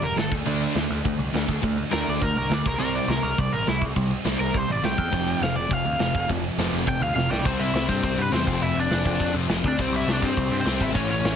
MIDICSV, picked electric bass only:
0, 0, Header, 1, 2, 480
1, 0, Start_track
1, 0, Tempo, 291262
1, 765, Time_signature, 4, 2, 24, 8
1, 18720, End_track
2, 0, Start_track
2, 0, Title_t, "Picked electric bass"
2, 0, Program_c, 0, 34
2, 39, Note_on_c, 0, 28, 91
2, 202, Note_off_c, 0, 28, 0
2, 284, Note_on_c, 0, 31, 80
2, 446, Note_off_c, 0, 31, 0
2, 521, Note_on_c, 0, 38, 92
2, 683, Note_off_c, 0, 38, 0
2, 757, Note_on_c, 0, 38, 91
2, 1082, Note_off_c, 0, 38, 0
2, 1240, Note_on_c, 0, 38, 102
2, 1403, Note_off_c, 0, 38, 0
2, 1483, Note_on_c, 0, 38, 86
2, 1645, Note_off_c, 0, 38, 0
2, 1725, Note_on_c, 0, 38, 90
2, 1887, Note_off_c, 0, 38, 0
2, 1954, Note_on_c, 0, 36, 88
2, 2119, Note_off_c, 0, 36, 0
2, 2210, Note_on_c, 0, 38, 84
2, 2370, Note_off_c, 0, 38, 0
2, 2436, Note_on_c, 0, 38, 96
2, 2601, Note_off_c, 0, 38, 0
2, 2684, Note_on_c, 0, 38, 85
2, 3007, Note_off_c, 0, 38, 0
2, 3178, Note_on_c, 0, 38, 92
2, 3336, Note_off_c, 0, 38, 0
2, 3416, Note_on_c, 0, 38, 94
2, 3574, Note_off_c, 0, 38, 0
2, 3662, Note_on_c, 0, 38, 88
2, 3818, Note_off_c, 0, 38, 0
2, 3889, Note_on_c, 0, 36, 81
2, 4049, Note_off_c, 0, 36, 0
2, 4116, Note_on_c, 0, 38, 82
2, 4281, Note_off_c, 0, 38, 0
2, 4378, Note_on_c, 0, 36, 90
2, 4536, Note_off_c, 0, 36, 0
2, 4585, Note_on_c, 0, 36, 85
2, 4915, Note_off_c, 0, 36, 0
2, 5072, Note_on_c, 0, 36, 96
2, 5238, Note_off_c, 0, 36, 0
2, 5312, Note_on_c, 0, 36, 99
2, 5478, Note_off_c, 0, 36, 0
2, 5575, Note_on_c, 0, 36, 98
2, 5733, Note_off_c, 0, 36, 0
2, 5810, Note_on_c, 0, 33, 94
2, 5970, Note_off_c, 0, 33, 0
2, 6060, Note_on_c, 0, 36, 88
2, 6216, Note_off_c, 0, 36, 0
2, 6280, Note_on_c, 0, 36, 94
2, 6444, Note_off_c, 0, 36, 0
2, 6526, Note_on_c, 0, 36, 92
2, 6849, Note_off_c, 0, 36, 0
2, 7003, Note_on_c, 0, 36, 95
2, 7165, Note_off_c, 0, 36, 0
2, 7255, Note_on_c, 0, 36, 97
2, 7413, Note_off_c, 0, 36, 0
2, 7484, Note_on_c, 0, 36, 92
2, 7646, Note_off_c, 0, 36, 0
2, 7721, Note_on_c, 0, 33, 92
2, 7884, Note_off_c, 0, 33, 0
2, 7959, Note_on_c, 0, 36, 85
2, 8123, Note_off_c, 0, 36, 0
2, 8208, Note_on_c, 0, 40, 103
2, 8368, Note_off_c, 0, 40, 0
2, 8443, Note_on_c, 0, 29, 91
2, 8767, Note_off_c, 0, 29, 0
2, 8909, Note_on_c, 0, 29, 100
2, 9076, Note_off_c, 0, 29, 0
2, 9139, Note_on_c, 0, 29, 95
2, 9309, Note_off_c, 0, 29, 0
2, 9405, Note_on_c, 0, 29, 88
2, 9566, Note_off_c, 0, 29, 0
2, 9641, Note_on_c, 0, 38, 94
2, 9804, Note_off_c, 0, 38, 0
2, 9876, Note_on_c, 0, 29, 89
2, 10040, Note_off_c, 0, 29, 0
2, 10129, Note_on_c, 0, 29, 95
2, 10289, Note_off_c, 0, 29, 0
2, 10371, Note_on_c, 0, 29, 97
2, 10691, Note_off_c, 0, 29, 0
2, 10837, Note_on_c, 0, 29, 99
2, 11001, Note_off_c, 0, 29, 0
2, 11091, Note_on_c, 0, 29, 98
2, 11250, Note_off_c, 0, 29, 0
2, 11329, Note_on_c, 0, 29, 96
2, 11489, Note_off_c, 0, 29, 0
2, 11547, Note_on_c, 0, 38, 94
2, 11715, Note_off_c, 0, 38, 0
2, 11798, Note_on_c, 0, 29, 91
2, 11962, Note_off_c, 0, 29, 0
2, 12018, Note_on_c, 0, 35, 98
2, 12188, Note_off_c, 0, 35, 0
2, 12282, Note_on_c, 0, 36, 89
2, 12465, Note_off_c, 0, 36, 0
2, 12514, Note_on_c, 0, 36, 95
2, 12700, Note_off_c, 0, 36, 0
2, 12740, Note_on_c, 0, 36, 106
2, 12931, Note_off_c, 0, 36, 0
2, 12990, Note_on_c, 0, 43, 96
2, 13178, Note_off_c, 0, 43, 0
2, 13234, Note_on_c, 0, 36, 98
2, 13420, Note_off_c, 0, 36, 0
2, 13471, Note_on_c, 0, 43, 82
2, 13658, Note_off_c, 0, 43, 0
2, 13714, Note_on_c, 0, 40, 96
2, 13900, Note_off_c, 0, 40, 0
2, 13962, Note_on_c, 0, 29, 102
2, 14145, Note_off_c, 0, 29, 0
2, 14198, Note_on_c, 0, 29, 106
2, 14383, Note_off_c, 0, 29, 0
2, 14435, Note_on_c, 0, 29, 96
2, 14621, Note_off_c, 0, 29, 0
2, 14686, Note_on_c, 0, 29, 102
2, 14868, Note_off_c, 0, 29, 0
2, 14918, Note_on_c, 0, 29, 101
2, 15102, Note_off_c, 0, 29, 0
2, 15161, Note_on_c, 0, 29, 98
2, 15345, Note_off_c, 0, 29, 0
2, 15393, Note_on_c, 0, 41, 91
2, 15580, Note_off_c, 0, 41, 0
2, 15628, Note_on_c, 0, 29, 88
2, 15817, Note_off_c, 0, 29, 0
2, 15888, Note_on_c, 0, 38, 93
2, 16069, Note_off_c, 0, 38, 0
2, 16130, Note_on_c, 0, 36, 96
2, 16310, Note_off_c, 0, 36, 0
2, 16351, Note_on_c, 0, 36, 95
2, 16539, Note_off_c, 0, 36, 0
2, 16589, Note_on_c, 0, 36, 109
2, 16777, Note_off_c, 0, 36, 0
2, 16851, Note_on_c, 0, 43, 102
2, 17031, Note_off_c, 0, 43, 0
2, 17085, Note_on_c, 0, 36, 104
2, 17268, Note_off_c, 0, 36, 0
2, 17313, Note_on_c, 0, 43, 93
2, 17500, Note_off_c, 0, 43, 0
2, 17552, Note_on_c, 0, 36, 88
2, 17740, Note_off_c, 0, 36, 0
2, 17806, Note_on_c, 0, 32, 95
2, 17989, Note_off_c, 0, 32, 0
2, 18044, Note_on_c, 0, 33, 99
2, 18227, Note_off_c, 0, 33, 0
2, 18273, Note_on_c, 0, 33, 86
2, 18461, Note_off_c, 0, 33, 0
2, 18522, Note_on_c, 0, 33, 102
2, 18707, Note_off_c, 0, 33, 0
2, 18720, End_track
0, 0, End_of_file